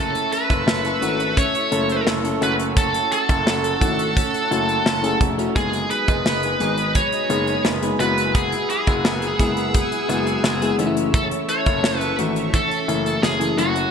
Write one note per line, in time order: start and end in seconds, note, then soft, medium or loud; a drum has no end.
0.00 0.13 F#1 medium
0.00 0.74 A3 medium
0.00 0.67 C#4 medium
0.00 0.74 C#4 medium
0.00 0.15 E4 medium
0.00 0.75 E4 medium
0.00 0.33 A4 medium
0.00 0.75 A4 medium
0.00 5.52 A4 medium
0.00 2.39 E5 medium
0.00 5.52 C#6 medium
0.00 2.39 E6 medium
0.15 0.49 E4 medium
0.15 closed hi-hat medium
0.32 0.84 A4 medium
0.32 1.41 B4 medium
0.32 closed hi-hat medium
0.50 0.63 F#1 medium
0.50 1.01 E4 medium
0.50 kick medium
0.50 closed hi-hat soft
0.67 0.92 F#1 medium
0.67 1.19 C#4 medium
0.67 snare loud
0.84 1.71 A4 medium
0.84 closed hi-hat soft
1.01 1.40 G#1 medium
1.01 1.57 A3 medium
1.01 1.57 C#4 medium
1.01 1.54 E4 medium
1.01 1.57 E4 medium
1.01 1.57 F#4 medium
1.01 closed hi-hat medium
1.19 1.36 C#4 medium
1.19 closed hi-hat soft
1.37 2.06 C#4 medium
1.37 2.03 C#5 medium
1.37 kick medium
1.37 closed hi-hat medium
1.54 1.89 E4 medium
1.54 closed hi-hat soft
1.71 1.97 F#1 medium
1.71 2.13 A3 medium
1.71 2.13 C#4 medium
1.71 2.13 E4 medium
1.71 2.23 A4 medium
1.71 2.14 A4 medium
1.71 closed hi-hat medium
1.89 2.93 E4 medium
1.89 closed hi-hat soft
2.06 2.32 F#1 medium
2.06 2.41 C#4 medium
2.06 snare medium
2.23 2.40 A3 medium
2.23 2.40 C#4 medium
2.23 2.40 E4 medium
2.23 3.11 A4 medium
2.23 2.42 A4 medium
2.23 closed hi-hat medium
2.41 2.92 F#1 medium
2.41 3.53 A3 medium
2.41 3.53 C#4 medium
2.41 2.57 C#4 medium
2.41 3.53 E4 medium
2.41 3.53 F#4 medium
2.41 2.52 B4 medium
2.41 5.53 F#5 medium
2.41 5.53 E6 medium
2.41 closed hi-hat medium
2.59 2.75 C#4 soft
2.59 closed hi-hat medium
2.76 3.45 C#4 medium
2.76 3.11 A4 medium
2.76 kick loud
2.76 closed hi-hat medium
2.93 3.27 E4 medium
2.93 closed hi-hat medium
3.11 3.62 A4 medium
3.11 5.17 A4 medium
3.11 closed hi-hat medium
3.28 3.42 F#1 medium
3.28 3.80 E4 medium
3.28 kick medium
3.28 closed hi-hat soft
3.46 3.72 F#1 medium
3.46 3.97 C#4 medium
3.46 snare loud
3.63 4.50 A4 medium
3.63 closed hi-hat medium
3.80 4.19 G#1 medium
3.80 4.36 A3 medium
3.80 4.36 C#4 medium
3.80 4.32 E4 medium
3.80 4.36 E4 medium
3.80 4.36 F#4 medium
3.80 kick medium
3.80 closed hi-hat medium
3.98 4.15 C#4 medium
3.98 closed hi-hat soft
4.16 4.85 C#4 medium
4.16 kick medium
4.16 closed hi-hat medium
4.33 4.67 E4 medium
4.33 closed hi-hat soft
4.51 4.76 F#1 medium
4.51 4.92 A3 medium
4.51 4.93 C#4 medium
4.51 4.93 E4 medium
4.51 4.93 F#4 medium
4.51 5.02 A4 medium
4.51 closed hi-hat medium
4.68 5.19 E4 medium
4.68 closed hi-hat soft
4.86 5.11 F#1 medium
4.86 5.37 C#4 medium
4.86 snare loud
5.03 5.31 A3 medium
5.03 5.31 C#4 medium
5.03 5.31 E4 medium
5.03 5.31 G#4 medium
5.03 5.63 A4 medium
5.03 closed hi-hat medium
5.21 5.46 F1 medium
5.21 5.63 E4 medium
5.21 kick medium
5.21 closed hi-hat medium
5.37 5.52 A3 medium
5.37 5.52 C#4 medium
5.37 5.63 C#4 medium
5.37 5.52 E4 medium
5.37 5.52 F#4 medium
5.37 closed hi-hat soft
5.55 5.81 F#1 medium
5.55 6.95 F#3 medium
5.55 6.38 G#3 medium
5.55 6.38 B3 medium
5.55 6.38 D#4 medium
5.55 6.38 G#4 medium
5.55 5.90 G#4 medium
5.55 10.75 G#4 medium
5.55 7.98 D#5 medium
5.55 10.75 B5 medium
5.55 7.98 D#6 medium
5.55 kick loud
5.55 closed hi-hat medium
5.73 6.07 D#4 medium
5.73 closed hi-hat medium
5.90 6.43 G#4 medium
5.90 6.91 B4 medium
5.90 closed hi-hat medium
6.08 6.21 F#1 medium
6.08 6.59 D#4 medium
6.08 kick medium
6.08 closed hi-hat soft
6.26 6.51 F#1 medium
6.26 6.77 B3 medium
6.26 snare loud
6.43 7.30 G#4 medium
6.43 closed hi-hat medium
6.60 6.98 G#1 medium
6.60 7.15 G#3 medium
6.60 7.15 B3 medium
6.60 7.11 D#4 medium
6.60 7.16 D#4 medium
6.60 7.16 G#4 medium
6.60 closed hi-hat medium
6.78 7.65 B3 medium
6.78 closed hi-hat soft
6.95 7.99 F#3 medium
6.95 7.61 C#5 medium
6.95 kick medium
6.95 closed hi-hat medium
7.13 7.46 D#4 medium
7.13 closed hi-hat soft
7.29 7.55 F#1 medium
7.29 7.71 G#3 medium
7.29 7.71 B3 medium
7.29 7.71 D#4 medium
7.29 7.82 G#4 medium
7.29 7.72 G#4 medium
7.29 closed hi-hat medium
7.47 8.07 D#4 medium
7.47 closed hi-hat soft
7.65 7.90 F#1 loud
7.65 8.17 B3 medium
7.65 snare loud
7.82 7.98 G#3 medium
7.82 7.99 B3 medium
7.82 8.00 D#4 medium
7.82 8.38 G#4 medium
7.82 8.00 B4 medium
7.82 closed hi-hat medium
7.99 8.50 F#1 medium
7.99 8.34 F#3 medium
7.99 9.11 G#3 medium
7.99 9.11 B3 medium
7.99 9.12 E4 medium
7.99 9.12 F#4 medium
7.99 8.36 B4 medium
7.99 10.76 F#5 medium
7.99 13.89 E6 medium
7.99 closed hi-hat medium
8.17 9.03 B3 medium
8.17 closed hi-hat medium
8.35 9.73 F#3 medium
8.35 8.69 G#4 medium
8.35 kick loud
8.35 closed hi-hat medium
8.52 8.87 E4 medium
8.52 closed hi-hat medium
8.70 9.21 G#4 medium
8.70 10.75 G#4 medium
8.70 closed hi-hat medium
8.87 9.00 F#1 medium
8.87 9.39 E4 medium
8.87 kick medium
8.87 closed hi-hat soft
9.04 9.30 F#1 medium
9.04 9.56 B3 medium
9.04 snare loud
9.22 10.08 G#4 medium
9.22 closed hi-hat medium
9.39 9.77 F#1 medium
9.39 9.94 G#3 medium
9.39 9.95 B3 medium
9.39 9.91 E4 medium
9.39 9.95 E4 medium
9.39 9.95 G#4 medium
9.39 kick medium
9.39 closed hi-hat medium
9.57 10.43 B3 medium
9.57 closed hi-hat soft
9.74 10.86 F#3 medium
9.74 kick medium
9.74 closed hi-hat medium
9.92 10.27 E4 medium
9.92 closed hi-hat soft
10.09 10.34 F#1 medium
10.09 10.50 G#3 medium
10.09 10.50 B3 medium
10.09 10.51 E4 medium
10.09 10.51 F#4 medium
10.09 10.61 G#4 medium
10.09 closed hi-hat medium
10.27 11.31 E4 medium
10.27 closed hi-hat soft
10.44 10.69 F#1 loud
10.44 10.79 B3 medium
10.44 snare loud
10.61 10.79 G#3 medium
10.61 10.79 B3 medium
10.61 10.79 E4 medium
10.61 10.86 G#4 medium
10.61 10.79 G#4 medium
10.61 closed hi-hat medium
10.79 11.29 F#1 medium
10.79 11.90 E3 medium
10.79 11.91 A3 medium
10.79 13.90 A3 medium
10.79 11.91 C#4 medium
10.79 10.96 C#4 medium
10.79 10.86 D#4 medium
10.79 13.56 E5 medium
10.79 13.90 C#6 medium
10.79 closed hi-hat medium
10.86 11.94 E4 medium
10.97 11.14 C#4 medium
10.97 closed hi-hat medium
11.14 11.84 C#4 medium
11.14 11.24 A4 medium
11.14 kick loud
11.14 closed hi-hat medium
11.31 11.66 E4 medium
11.31 closed hi-hat medium
11.49 12.01 A4 medium
11.49 11.98 C#5 loud
11.49 closed hi-hat medium
11.66 11.79 F#1 medium
11.66 12.19 E4 medium
11.66 kick medium
11.66 closed hi-hat soft
11.84 12.09 F#1 medium
11.84 12.36 C#4 medium
11.84 snare loud
11.98 12.89 A4 medium
11.98 12.15 B4 loud
11.98 closed hi-hat medium
12.18 12.56 G#1 medium
12.18 12.73 E3 medium
12.18 12.73 A3 medium
12.18 12.74 C#4 medium
12.18 12.71 E4 medium
12.18 12.74 F#4 medium
12.18 closed hi-hat medium
12.36 12.54 C#4 medium
12.36 closed hi-hat soft
12.54 13.23 C#4 medium
12.54 13.23 A4 medium
12.54 kick medium
12.54 closed hi-hat medium
12.71 13.06 E4 medium
12.71 closed hi-hat soft
12.88 13.13 F#1 medium
12.88 13.29 E3 medium
12.88 13.29 A3 medium
12.88 13.30 C#4 medium
12.88 13.30 E4 medium
12.88 13.41 A4 medium
12.88 closed hi-hat medium
13.06 13.91 E4 medium
13.06 closed hi-hat soft
13.23 13.48 F#1 medium
13.23 13.58 C#4 medium
13.23 13.58 G#4 loud
13.23 snare loud
13.40 13.58 E3 medium
13.40 13.56 A3 medium
13.40 13.56 C#4 medium
13.40 13.57 E4 medium
13.40 13.91 A4 medium
13.40 closed hi-hat medium
13.57 13.83 F#1 medium
13.57 13.85 F#3 medium
13.57 13.86 A3 medium
13.57 13.86 C#4 medium
13.57 13.76 C#4 medium
13.57 13.86 E4 medium
13.57 13.91 F#4 medium
13.57 13.91 F#5 medium
13.57 closed hi-hat medium
13.76 13.91 C#4 medium
13.76 closed hi-hat medium